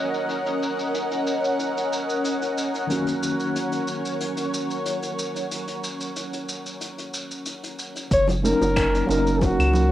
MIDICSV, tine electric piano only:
0, 0, Header, 1, 2, 480
1, 0, Start_track
1, 0, Key_signature, 6, "major"
1, 0, Tempo, 652174
1, 210, Time_signature, 4, 2, 24, 8
1, 7300, End_track
2, 0, Start_track
2, 0, Title_t, "Tine electric piano"
2, 0, Program_c, 0, 4
2, 0, Note_on_c, 0, 51, 61
2, 0, Note_on_c, 0, 54, 53
2, 0, Note_on_c, 0, 58, 57
2, 0, Note_on_c, 0, 61, 57
2, 0, Note_on_c, 0, 66, 67
2, 2092, Note_off_c, 0, 51, 0
2, 2098, Note_off_c, 0, 54, 0
2, 2103, Note_off_c, 0, 58, 0
2, 2107, Note_off_c, 0, 61, 0
2, 2112, Note_off_c, 0, 66, 0
2, 2112, Note_on_c, 0, 51, 63
2, 2121, Note_on_c, 0, 54, 58
2, 2131, Note_on_c, 0, 58, 59
2, 2139, Note_on_c, 0, 61, 61
2, 2150, Note_on_c, 0, 66, 70
2, 5934, Note_off_c, 0, 51, 0
2, 5938, Note_off_c, 0, 54, 0
2, 5943, Note_off_c, 0, 58, 0
2, 5947, Note_off_c, 0, 61, 0
2, 5953, Note_off_c, 0, 66, 0
2, 6199, Note_on_c, 0, 54, 65
2, 6204, Note_on_c, 0, 58, 58
2, 6208, Note_on_c, 0, 61, 58
2, 6213, Note_on_c, 0, 63, 61
2, 6218, Note_on_c, 0, 70, 70
2, 6657, Note_off_c, 0, 54, 0
2, 6660, Note_off_c, 0, 58, 0
2, 6662, Note_off_c, 0, 61, 0
2, 6664, Note_off_c, 0, 63, 0
2, 6667, Note_off_c, 0, 70, 0
2, 6668, Note_on_c, 0, 54, 72
2, 6678, Note_on_c, 0, 58, 70
2, 6689, Note_on_c, 0, 61, 67
2, 6698, Note_on_c, 0, 63, 67
2, 6710, Note_on_c, 0, 70, 87
2, 7255, Note_off_c, 0, 54, 0
2, 7260, Note_off_c, 0, 58, 0
2, 7265, Note_off_c, 0, 61, 0
2, 7270, Note_off_c, 0, 63, 0
2, 7276, Note_off_c, 0, 70, 0
2, 7277, Note_on_c, 0, 54, 77
2, 7300, Note_off_c, 0, 54, 0
2, 7300, End_track
0, 0, End_of_file